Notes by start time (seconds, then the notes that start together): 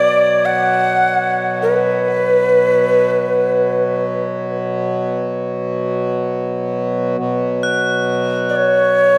Already playing: B2 F#3 D5 G#6
0.45 F#5
1.62 B4
7.18 B2 F#3
7.63 F#6
8.50 D5
8.56 C#5